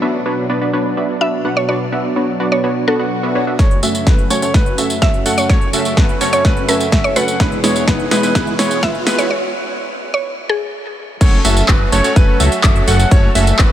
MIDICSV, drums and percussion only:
0, 0, Header, 1, 2, 480
1, 0, Start_track
1, 0, Key_signature, 3, "minor"
1, 0, Tempo, 476190
1, 1699, Time_signature, 4, 2, 24, 8
1, 13831, End_track
2, 0, Start_track
2, 0, Title_t, "Drums"
2, 3619, Note_on_c, 9, 36, 116
2, 3619, Note_on_c, 9, 38, 46
2, 3619, Note_on_c, 9, 42, 54
2, 3619, Note_on_c, 9, 54, 32
2, 3720, Note_off_c, 9, 36, 0
2, 3720, Note_off_c, 9, 38, 0
2, 3720, Note_off_c, 9, 42, 0
2, 3720, Note_off_c, 9, 54, 0
2, 3739, Note_on_c, 9, 42, 27
2, 3840, Note_off_c, 9, 42, 0
2, 3859, Note_on_c, 9, 46, 101
2, 3859, Note_on_c, 9, 54, 74
2, 3959, Note_off_c, 9, 46, 0
2, 3960, Note_off_c, 9, 54, 0
2, 3979, Note_on_c, 9, 42, 53
2, 3979, Note_on_c, 9, 54, 42
2, 4080, Note_off_c, 9, 42, 0
2, 4080, Note_off_c, 9, 54, 0
2, 4099, Note_on_c, 9, 36, 112
2, 4099, Note_on_c, 9, 38, 48
2, 4099, Note_on_c, 9, 42, 54
2, 4100, Note_on_c, 9, 54, 32
2, 4200, Note_off_c, 9, 36, 0
2, 4200, Note_off_c, 9, 38, 0
2, 4200, Note_off_c, 9, 42, 0
2, 4200, Note_off_c, 9, 54, 0
2, 4219, Note_on_c, 9, 42, 27
2, 4320, Note_off_c, 9, 42, 0
2, 4339, Note_on_c, 9, 46, 104
2, 4339, Note_on_c, 9, 54, 79
2, 4440, Note_off_c, 9, 46, 0
2, 4440, Note_off_c, 9, 54, 0
2, 4459, Note_on_c, 9, 42, 55
2, 4459, Note_on_c, 9, 54, 43
2, 4560, Note_off_c, 9, 42, 0
2, 4560, Note_off_c, 9, 54, 0
2, 4579, Note_on_c, 9, 36, 114
2, 4579, Note_on_c, 9, 38, 52
2, 4579, Note_on_c, 9, 42, 52
2, 4579, Note_on_c, 9, 54, 33
2, 4680, Note_off_c, 9, 36, 0
2, 4680, Note_off_c, 9, 38, 0
2, 4680, Note_off_c, 9, 42, 0
2, 4680, Note_off_c, 9, 54, 0
2, 4699, Note_on_c, 9, 42, 27
2, 4800, Note_off_c, 9, 42, 0
2, 4819, Note_on_c, 9, 46, 101
2, 4819, Note_on_c, 9, 54, 72
2, 4920, Note_off_c, 9, 46, 0
2, 4920, Note_off_c, 9, 54, 0
2, 4939, Note_on_c, 9, 42, 53
2, 4939, Note_on_c, 9, 54, 43
2, 5040, Note_off_c, 9, 42, 0
2, 5040, Note_off_c, 9, 54, 0
2, 5059, Note_on_c, 9, 36, 114
2, 5059, Note_on_c, 9, 38, 57
2, 5059, Note_on_c, 9, 42, 54
2, 5059, Note_on_c, 9, 54, 33
2, 5160, Note_off_c, 9, 36, 0
2, 5160, Note_off_c, 9, 38, 0
2, 5160, Note_off_c, 9, 42, 0
2, 5160, Note_off_c, 9, 54, 0
2, 5179, Note_on_c, 9, 42, 26
2, 5280, Note_off_c, 9, 42, 0
2, 5299, Note_on_c, 9, 46, 107
2, 5300, Note_on_c, 9, 54, 75
2, 5400, Note_off_c, 9, 46, 0
2, 5400, Note_off_c, 9, 54, 0
2, 5419, Note_on_c, 9, 42, 54
2, 5419, Note_on_c, 9, 54, 44
2, 5520, Note_off_c, 9, 42, 0
2, 5520, Note_off_c, 9, 54, 0
2, 5539, Note_on_c, 9, 36, 119
2, 5539, Note_on_c, 9, 38, 59
2, 5539, Note_on_c, 9, 42, 54
2, 5539, Note_on_c, 9, 54, 33
2, 5640, Note_off_c, 9, 36, 0
2, 5640, Note_off_c, 9, 38, 0
2, 5640, Note_off_c, 9, 42, 0
2, 5640, Note_off_c, 9, 54, 0
2, 5659, Note_on_c, 9, 42, 26
2, 5760, Note_off_c, 9, 42, 0
2, 5779, Note_on_c, 9, 46, 108
2, 5779, Note_on_c, 9, 54, 72
2, 5880, Note_off_c, 9, 46, 0
2, 5880, Note_off_c, 9, 54, 0
2, 5899, Note_on_c, 9, 42, 50
2, 5899, Note_on_c, 9, 54, 43
2, 6000, Note_off_c, 9, 42, 0
2, 6000, Note_off_c, 9, 54, 0
2, 6019, Note_on_c, 9, 36, 117
2, 6019, Note_on_c, 9, 38, 63
2, 6019, Note_on_c, 9, 42, 50
2, 6019, Note_on_c, 9, 54, 32
2, 6120, Note_off_c, 9, 36, 0
2, 6120, Note_off_c, 9, 38, 0
2, 6120, Note_off_c, 9, 42, 0
2, 6120, Note_off_c, 9, 54, 0
2, 6139, Note_on_c, 9, 42, 26
2, 6240, Note_off_c, 9, 42, 0
2, 6259, Note_on_c, 9, 46, 109
2, 6259, Note_on_c, 9, 54, 74
2, 6359, Note_off_c, 9, 46, 0
2, 6360, Note_off_c, 9, 54, 0
2, 6379, Note_on_c, 9, 42, 54
2, 6379, Note_on_c, 9, 54, 43
2, 6479, Note_off_c, 9, 42, 0
2, 6480, Note_off_c, 9, 54, 0
2, 6499, Note_on_c, 9, 36, 116
2, 6499, Note_on_c, 9, 38, 63
2, 6499, Note_on_c, 9, 42, 52
2, 6499, Note_on_c, 9, 54, 33
2, 6599, Note_off_c, 9, 38, 0
2, 6599, Note_off_c, 9, 42, 0
2, 6600, Note_off_c, 9, 36, 0
2, 6600, Note_off_c, 9, 54, 0
2, 6619, Note_on_c, 9, 42, 27
2, 6720, Note_off_c, 9, 42, 0
2, 6738, Note_on_c, 9, 46, 105
2, 6739, Note_on_c, 9, 54, 73
2, 6839, Note_off_c, 9, 46, 0
2, 6840, Note_off_c, 9, 54, 0
2, 6859, Note_on_c, 9, 42, 51
2, 6859, Note_on_c, 9, 54, 43
2, 6959, Note_off_c, 9, 42, 0
2, 6960, Note_off_c, 9, 54, 0
2, 6979, Note_on_c, 9, 36, 122
2, 6979, Note_on_c, 9, 38, 69
2, 6979, Note_on_c, 9, 42, 53
2, 6979, Note_on_c, 9, 54, 31
2, 7079, Note_off_c, 9, 36, 0
2, 7079, Note_off_c, 9, 38, 0
2, 7079, Note_off_c, 9, 42, 0
2, 7080, Note_off_c, 9, 54, 0
2, 7098, Note_on_c, 9, 42, 25
2, 7199, Note_off_c, 9, 42, 0
2, 7218, Note_on_c, 9, 46, 111
2, 7219, Note_on_c, 9, 54, 76
2, 7319, Note_off_c, 9, 46, 0
2, 7319, Note_off_c, 9, 54, 0
2, 7338, Note_on_c, 9, 42, 54
2, 7339, Note_on_c, 9, 54, 43
2, 7439, Note_off_c, 9, 42, 0
2, 7439, Note_off_c, 9, 54, 0
2, 7459, Note_on_c, 9, 36, 122
2, 7459, Note_on_c, 9, 38, 76
2, 7459, Note_on_c, 9, 42, 51
2, 7459, Note_on_c, 9, 54, 33
2, 7559, Note_off_c, 9, 36, 0
2, 7559, Note_off_c, 9, 38, 0
2, 7559, Note_off_c, 9, 42, 0
2, 7560, Note_off_c, 9, 54, 0
2, 7579, Note_on_c, 9, 42, 25
2, 7679, Note_off_c, 9, 42, 0
2, 7698, Note_on_c, 9, 38, 75
2, 7698, Note_on_c, 9, 46, 108
2, 7699, Note_on_c, 9, 54, 72
2, 7799, Note_off_c, 9, 38, 0
2, 7799, Note_off_c, 9, 46, 0
2, 7800, Note_off_c, 9, 54, 0
2, 7819, Note_on_c, 9, 42, 50
2, 7819, Note_on_c, 9, 54, 43
2, 7920, Note_off_c, 9, 42, 0
2, 7920, Note_off_c, 9, 54, 0
2, 7939, Note_on_c, 9, 36, 123
2, 7939, Note_on_c, 9, 38, 81
2, 7939, Note_on_c, 9, 42, 51
2, 7939, Note_on_c, 9, 54, 32
2, 8039, Note_off_c, 9, 36, 0
2, 8040, Note_off_c, 9, 38, 0
2, 8040, Note_off_c, 9, 42, 0
2, 8040, Note_off_c, 9, 54, 0
2, 8059, Note_on_c, 9, 42, 25
2, 8159, Note_off_c, 9, 42, 0
2, 8179, Note_on_c, 9, 38, 84
2, 8179, Note_on_c, 9, 46, 110
2, 8179, Note_on_c, 9, 54, 74
2, 8279, Note_off_c, 9, 38, 0
2, 8279, Note_off_c, 9, 46, 0
2, 8280, Note_off_c, 9, 54, 0
2, 8298, Note_on_c, 9, 42, 53
2, 8299, Note_on_c, 9, 54, 43
2, 8399, Note_off_c, 9, 42, 0
2, 8400, Note_off_c, 9, 54, 0
2, 8418, Note_on_c, 9, 36, 121
2, 8418, Note_on_c, 9, 38, 83
2, 8418, Note_on_c, 9, 42, 51
2, 8419, Note_on_c, 9, 54, 32
2, 8519, Note_off_c, 9, 36, 0
2, 8519, Note_off_c, 9, 38, 0
2, 8519, Note_off_c, 9, 42, 0
2, 8520, Note_off_c, 9, 54, 0
2, 8539, Note_on_c, 9, 42, 27
2, 8639, Note_off_c, 9, 42, 0
2, 8658, Note_on_c, 9, 38, 86
2, 8658, Note_on_c, 9, 46, 107
2, 8659, Note_on_c, 9, 54, 74
2, 8759, Note_off_c, 9, 38, 0
2, 8759, Note_off_c, 9, 46, 0
2, 8759, Note_off_c, 9, 54, 0
2, 8778, Note_on_c, 9, 42, 53
2, 8779, Note_on_c, 9, 54, 42
2, 8879, Note_off_c, 9, 42, 0
2, 8879, Note_off_c, 9, 54, 0
2, 8899, Note_on_c, 9, 36, 127
2, 8899, Note_on_c, 9, 38, 88
2, 8899, Note_on_c, 9, 42, 50
2, 8899, Note_on_c, 9, 54, 33
2, 8999, Note_off_c, 9, 36, 0
2, 9000, Note_off_c, 9, 38, 0
2, 9000, Note_off_c, 9, 42, 0
2, 9000, Note_off_c, 9, 54, 0
2, 9019, Note_on_c, 9, 42, 25
2, 9120, Note_off_c, 9, 42, 0
2, 9139, Note_on_c, 9, 38, 88
2, 9139, Note_on_c, 9, 46, 111
2, 9139, Note_on_c, 9, 54, 75
2, 9239, Note_off_c, 9, 38, 0
2, 9239, Note_off_c, 9, 46, 0
2, 9240, Note_off_c, 9, 54, 0
2, 9259, Note_on_c, 9, 42, 51
2, 9259, Note_on_c, 9, 54, 43
2, 9359, Note_off_c, 9, 42, 0
2, 9360, Note_off_c, 9, 54, 0
2, 11299, Note_on_c, 9, 36, 119
2, 11299, Note_on_c, 9, 42, 83
2, 11299, Note_on_c, 9, 49, 107
2, 11299, Note_on_c, 9, 54, 36
2, 11400, Note_off_c, 9, 36, 0
2, 11400, Note_off_c, 9, 42, 0
2, 11400, Note_off_c, 9, 49, 0
2, 11400, Note_off_c, 9, 54, 0
2, 11539, Note_on_c, 9, 46, 106
2, 11539, Note_on_c, 9, 54, 77
2, 11640, Note_off_c, 9, 46, 0
2, 11640, Note_off_c, 9, 54, 0
2, 11659, Note_on_c, 9, 42, 58
2, 11660, Note_on_c, 9, 54, 46
2, 11760, Note_off_c, 9, 42, 0
2, 11760, Note_off_c, 9, 54, 0
2, 11777, Note_on_c, 9, 39, 127
2, 11779, Note_on_c, 9, 36, 118
2, 11780, Note_on_c, 9, 42, 83
2, 11780, Note_on_c, 9, 54, 34
2, 11878, Note_off_c, 9, 39, 0
2, 11880, Note_off_c, 9, 36, 0
2, 11880, Note_off_c, 9, 42, 0
2, 11881, Note_off_c, 9, 54, 0
2, 12019, Note_on_c, 9, 46, 110
2, 12020, Note_on_c, 9, 54, 80
2, 12120, Note_off_c, 9, 46, 0
2, 12120, Note_off_c, 9, 54, 0
2, 12139, Note_on_c, 9, 42, 58
2, 12140, Note_on_c, 9, 54, 47
2, 12240, Note_off_c, 9, 42, 0
2, 12240, Note_off_c, 9, 54, 0
2, 12259, Note_on_c, 9, 36, 121
2, 12259, Note_on_c, 9, 42, 86
2, 12259, Note_on_c, 9, 54, 34
2, 12360, Note_off_c, 9, 36, 0
2, 12360, Note_off_c, 9, 42, 0
2, 12360, Note_off_c, 9, 54, 0
2, 12499, Note_on_c, 9, 46, 107
2, 12500, Note_on_c, 9, 54, 80
2, 12600, Note_off_c, 9, 46, 0
2, 12600, Note_off_c, 9, 54, 0
2, 12619, Note_on_c, 9, 42, 56
2, 12620, Note_on_c, 9, 54, 46
2, 12720, Note_off_c, 9, 42, 0
2, 12720, Note_off_c, 9, 54, 0
2, 12736, Note_on_c, 9, 39, 123
2, 12739, Note_on_c, 9, 36, 120
2, 12739, Note_on_c, 9, 42, 82
2, 12739, Note_on_c, 9, 54, 34
2, 12837, Note_off_c, 9, 39, 0
2, 12840, Note_off_c, 9, 36, 0
2, 12840, Note_off_c, 9, 42, 0
2, 12840, Note_off_c, 9, 54, 0
2, 12859, Note_on_c, 9, 42, 40
2, 12960, Note_off_c, 9, 42, 0
2, 12979, Note_on_c, 9, 46, 108
2, 12979, Note_on_c, 9, 54, 81
2, 13080, Note_off_c, 9, 46, 0
2, 13080, Note_off_c, 9, 54, 0
2, 13099, Note_on_c, 9, 42, 55
2, 13099, Note_on_c, 9, 54, 46
2, 13200, Note_off_c, 9, 42, 0
2, 13200, Note_off_c, 9, 54, 0
2, 13219, Note_on_c, 9, 36, 126
2, 13219, Note_on_c, 9, 42, 85
2, 13219, Note_on_c, 9, 54, 34
2, 13320, Note_off_c, 9, 36, 0
2, 13320, Note_off_c, 9, 42, 0
2, 13320, Note_off_c, 9, 54, 0
2, 13459, Note_on_c, 9, 46, 112
2, 13459, Note_on_c, 9, 54, 76
2, 13560, Note_off_c, 9, 46, 0
2, 13560, Note_off_c, 9, 54, 0
2, 13579, Note_on_c, 9, 42, 56
2, 13579, Note_on_c, 9, 54, 46
2, 13680, Note_off_c, 9, 42, 0
2, 13680, Note_off_c, 9, 54, 0
2, 13696, Note_on_c, 9, 39, 123
2, 13699, Note_on_c, 9, 36, 126
2, 13699, Note_on_c, 9, 42, 80
2, 13699, Note_on_c, 9, 54, 33
2, 13797, Note_off_c, 9, 39, 0
2, 13800, Note_off_c, 9, 36, 0
2, 13800, Note_off_c, 9, 42, 0
2, 13800, Note_off_c, 9, 54, 0
2, 13831, End_track
0, 0, End_of_file